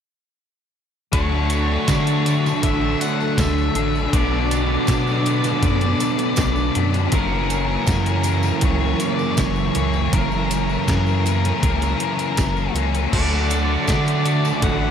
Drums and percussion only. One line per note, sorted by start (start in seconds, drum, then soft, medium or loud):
1.13 kick loud
1.13 closed hi-hat loud
1.13 tambourine soft
1.50 closed hi-hat medium
1.50 tambourine medium
1.88 kick loud
1.88 snare loud
1.88 closed hi-hat loud
1.88 tambourine medium
2.07 closed hi-hat soft
2.07 tambourine soft
2.26 closed hi-hat medium
2.26 tambourine medium
2.46 snare soft
2.46 tambourine medium
2.63 kick loud
2.63 closed hi-hat loud
2.63 tambourine soft
3.01 closed hi-hat medium
3.01 tambourine medium
3.21 tambourine soft
3.38 kick loud
3.38 snare loud
3.38 closed hi-hat loud
3.38 tambourine medium
3.58 tambourine soft
3.75 closed hi-hat medium
3.95 tambourine soft
4.13 kick loud
4.13 closed hi-hat loud
4.13 tambourine soft
4.51 closed hi-hat medium
4.51 tambourine medium
4.87 kick loud
4.87 snare loud
4.87 closed hi-hat loud
4.87 tambourine medium
5.07 tambourine soft
5.26 closed hi-hat medium
5.26 tambourine medium
5.44 snare soft
5.44 closed hi-hat soft
5.44 tambourine medium
5.63 kick loud
5.63 closed hi-hat medium
5.63 tambourine soft
5.81 closed hi-hat soft
6.00 closed hi-hat medium
6.00 tambourine medium
6.18 closed hi-hat soft
6.18 tambourine soft
6.36 kick loud
6.36 snare loud
6.36 closed hi-hat medium
6.36 tambourine medium
6.56 tambourine soft
6.75 closed hi-hat medium
6.94 closed hi-hat soft
6.94 tambourine soft
7.12 kick loud
7.12 closed hi-hat loud
7.12 tambourine soft
7.50 closed hi-hat medium
7.50 tambourine medium
7.87 kick loud
7.87 snare loud
7.87 closed hi-hat loud
7.87 tambourine medium
8.06 closed hi-hat soft
8.06 tambourine soft
8.23 closed hi-hat medium
8.23 tambourine medium
8.43 snare soft
8.43 tambourine medium
8.61 kick loud
8.61 closed hi-hat loud
8.61 tambourine soft
9.00 closed hi-hat medium
9.00 tambourine medium
9.19 tambourine soft
9.37 kick loud
9.37 snare loud
9.37 closed hi-hat loud
9.37 tambourine medium
9.56 tambourine soft
9.75 closed hi-hat medium
9.94 tambourine soft
10.13 kick loud
10.13 closed hi-hat loud
10.13 tambourine soft
10.32 tambourine soft
10.51 closed hi-hat medium
10.51 tambourine medium
10.69 tambourine soft
10.88 kick loud
10.88 snare loud
10.88 closed hi-hat loud
10.88 tambourine medium
11.06 tambourine soft
11.26 closed hi-hat medium
11.26 tambourine medium
11.45 snare soft
11.45 closed hi-hat medium
11.63 kick loud
11.63 closed hi-hat loud
11.63 tambourine soft
11.82 closed hi-hat soft
11.82 tambourine soft
12.00 closed hi-hat medium
12.19 closed hi-hat soft
12.19 tambourine soft
12.37 kick loud
12.37 snare loud
12.37 closed hi-hat medium
12.37 tambourine loud
12.57 tambourine soft
12.75 closed hi-hat medium
12.75 tambourine soft
12.95 closed hi-hat soft
12.95 tambourine soft
13.13 kick loud
13.13 tambourine soft
13.13 crash loud
13.50 closed hi-hat medium
13.50 tambourine medium
13.87 kick loud
13.87 snare loud
13.87 closed hi-hat loud
13.87 tambourine loud
14.07 closed hi-hat soft
14.07 tambourine soft
14.26 closed hi-hat medium
14.26 tambourine medium
14.45 tambourine medium
14.62 kick loud
14.62 closed hi-hat medium
14.62 tambourine soft